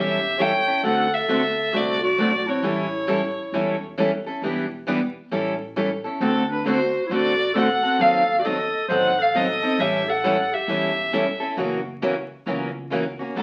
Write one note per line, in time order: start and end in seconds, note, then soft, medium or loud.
0.00 0.67 E1 medium
0.00 0.16 E3 medium
0.00 0.17 G3 medium
0.00 0.17 C#4 medium
0.00 0.17 E4 medium
0.00 0.40 G4 medium
0.00 0.17 A4 medium
0.00 0.43 E5 medium
0.39 0.51 E3 medium
0.39 0.51 G3 medium
0.39 0.51 C#4 medium
0.39 0.52 E4 medium
0.39 0.52 A4 medium
0.39 0.83 C#5 medium
0.39 0.85 G5 medium
0.66 0.84 C#4 soft
0.66 0.84 E4 soft
0.66 0.83 A4 soft
0.83 1.20 D2 medium
0.83 1.06 D3 medium
0.83 1.06 A3 medium
0.83 1.06 C4 medium
0.83 1.06 F#4 medium
0.83 1.13 A4 medium
0.83 1.06 A4 medium
0.83 1.15 F#5 medium
1.13 1.75 A4 medium
1.13 1.78 E5 medium
1.28 1.67 D2 medium
1.28 1.40 D3 medium
1.28 1.41 A3 medium
1.28 1.41 C4 medium
1.28 1.41 F#4 medium
1.28 1.41 A4 medium
1.73 2.12 C2 medium
1.73 1.95 D3 medium
1.73 1.95 A3 medium
1.73 1.95 C4 medium
1.73 2.01 F#4 medium
1.73 1.95 F#4 medium
1.73 1.95 A4 medium
1.73 2.04 D5 medium
2.02 2.48 F#4 medium
2.02 2.51 D5 medium
2.18 2.57 B1 medium
2.18 2.30 D3 medium
2.18 2.30 A3 medium
2.18 2.30 C4 medium
2.18 2.31 F#4 medium
2.18 2.30 A4 medium
2.46 2.63 C4 soft
2.46 3.81 E4 medium
2.46 2.63 F#4 soft
2.46 2.63 A4 soft
2.46 3.83 C#5 medium
2.62 3.35 A1 medium
2.62 2.85 E3 medium
2.62 2.85 G3 medium
2.62 2.85 C#4 medium
2.62 2.85 E4 medium
2.62 2.85 A4 medium
3.07 3.19 E3 medium
3.07 3.20 G3 medium
3.07 3.20 C#4 medium
3.07 3.20 E4 medium
3.07 3.20 A4 medium
3.52 4.24 E1 medium
3.52 3.75 E3 medium
3.52 3.75 G3 medium
3.52 3.75 C#4 medium
3.52 3.75 E4 medium
3.52 3.75 A4 medium
3.97 4.09 E3 medium
3.97 4.09 G3 medium
3.97 4.09 C#4 medium
3.97 4.10 E4 medium
3.97 4.10 A4 medium
4.26 4.43 C#4 soft
4.26 4.43 E4 soft
4.26 4.42 A4 medium
4.42 5.14 E1 medium
4.42 4.64 E3 medium
4.42 4.64 G3 medium
4.42 4.64 B3 medium
4.42 4.65 D4 medium
4.42 4.65 E4 medium
4.42 4.65 G4 medium
4.42 4.65 B4 medium
4.87 4.98 E3 medium
4.87 4.99 G3 medium
4.87 4.99 B3 medium
4.87 4.99 D4 medium
4.87 4.99 E4 medium
4.87 4.99 G4 medium
4.87 4.99 B4 medium
5.31 6.03 A1 medium
5.31 5.53 E3 medium
5.31 5.53 G3 medium
5.31 5.53 C#4 medium
5.31 5.53 E4 medium
5.31 5.54 A4 medium
5.76 5.88 E3 medium
5.76 5.88 G3 medium
5.76 5.88 C#4 medium
5.76 5.88 E4 medium
5.76 5.88 A4 medium
6.04 6.21 C#4 soft
6.04 6.21 E4 soft
6.04 6.21 A4 soft
6.20 6.92 D2 medium
6.20 6.42 D3 medium
6.20 6.42 A3 medium
6.20 6.42 C4 medium
6.20 6.47 C4 medium
6.20 6.43 F#4 medium
6.20 6.43 A4 medium
6.20 6.48 A4 medium
6.48 6.64 D4 medium
6.48 6.66 B4 medium
6.66 6.77 D3 medium
6.66 6.77 A3 medium
6.66 6.78 C4 medium
6.66 7.03 F#4 medium
6.66 6.78 F#4 medium
6.66 6.78 A4 medium
6.66 7.04 C5 medium
7.06 7.81 A1 medium
7.06 7.13 E4 medium
7.06 7.15 C5 medium
7.11 7.32 D3 medium
7.11 7.32 A3 medium
7.11 7.32 C4 medium
7.11 7.32 F#4 medium
7.11 7.53 F#4 medium
7.11 7.32 A4 medium
7.11 7.57 D5 medium
7.54 7.67 D3 medium
7.54 7.67 A3 medium
7.54 7.67 C4 medium
7.54 7.68 F#4 medium
7.54 7.99 A4 medium
7.54 7.68 A4 medium
7.58 8.03 F#5 loud
7.83 7.99 C4 soft
7.83 8.00 F#4 soft
7.83 7.99 A4 medium
7.99 8.71 D#2 medium
7.99 8.21 D#3 medium
7.99 8.21 F#3 medium
7.99 8.21 C4 medium
7.99 8.21 D#4 medium
7.99 8.38 A4 medium
7.99 8.21 A4 medium
7.99 8.40 F5 medium
8.39 8.44 F#4 medium
8.39 8.88 A4 medium
8.39 8.48 D5 medium
8.45 8.56 D#3 medium
8.45 8.56 F#3 medium
8.45 8.56 C4 medium
8.45 8.56 D#4 medium
8.45 8.56 A4 medium
8.45 8.90 D#5 medium
8.88 9.60 A1 medium
8.88 9.11 D#3 medium
8.88 9.11 F#3 medium
8.88 9.11 C4 medium
8.88 9.11 D#4 medium
8.88 9.11 A4 medium
8.88 9.21 C5 medium
8.88 9.23 F#5 loud
9.19 9.35 A4 medium
9.19 9.38 F5 medium
9.34 9.46 D#3 medium
9.34 9.46 F#3 medium
9.34 9.46 C4 medium
9.34 9.46 D#4 medium
9.34 9.82 A4 medium
9.34 9.46 A4 medium
9.34 9.83 D#5 medium
9.62 9.79 C4 soft
9.62 9.79 D#4 soft
9.62 9.78 A4 medium
9.78 10.50 A1 medium
9.78 10.00 E3 medium
9.78 10.00 G3 medium
9.78 10.01 C#4 medium
9.78 10.01 E4 medium
9.78 10.10 G4 medium
9.78 10.01 A4 medium
9.78 10.11 E5 medium
10.08 10.55 A4 medium
10.08 10.55 F#5 medium
10.24 10.35 E3 medium
10.24 10.35 G3 medium
10.24 10.35 C#4 medium
10.24 10.35 E4 medium
10.24 10.35 A4 medium
10.53 11.42 G4 medium
10.53 11.42 E5 medium
10.68 11.39 E1 medium
10.68 10.90 E3 medium
10.68 10.90 G3 medium
10.68 10.90 C#4 medium
10.68 10.90 E4 medium
10.68 10.90 A4 medium
11.13 11.24 E3 medium
11.13 11.24 G3 medium
11.13 11.25 C#4 medium
11.13 11.25 E4 medium
11.13 11.25 A4 medium
11.40 11.57 C#4 soft
11.40 11.57 E4 soft
11.40 11.56 A4 medium
11.57 12.29 F#1 medium
11.57 11.79 C#3 medium
11.57 11.79 E3 medium
11.57 11.79 F#3 medium
11.57 11.79 A#3 medium
11.57 11.79 C#4 medium
11.57 11.79 E4 medium
11.57 11.79 F#4 medium
11.57 11.79 A#4 medium
12.02 12.14 C#3 medium
12.02 12.14 E3 medium
12.02 12.13 F#3 medium
12.02 12.14 A#3 medium
12.02 12.14 C#4 medium
12.02 12.14 E4 medium
12.02 12.14 F#4 medium
12.02 12.14 A#4 medium
12.46 13.18 C#2 medium
12.46 12.68 C#3 medium
12.46 12.68 E3 medium
12.46 12.68 F#3 medium
12.46 12.69 A#3 medium
12.46 12.69 C#4 medium
12.46 12.68 E4 medium
12.46 12.69 F#4 medium
12.46 12.68 A#4 medium
12.90 13.03 C#3 medium
12.90 13.03 E3 medium
12.90 13.02 F#3 medium
12.90 13.03 A#3 medium
12.90 13.03 C#4 medium
12.90 13.03 E4 medium
12.90 13.03 F#4 medium
12.90 13.03 A#4 medium
13.19 13.36 A#3 soft
13.19 13.36 C#4 soft
13.19 13.35 F#4 medium
13.35 13.43 B1 medium
13.35 13.43 B2 medium
13.35 13.43 F#3 medium
13.35 13.43 A3 medium
13.35 13.43 D4 medium
13.35 13.43 F#4 medium
13.35 13.43 A4 medium
13.35 13.43 B4 medium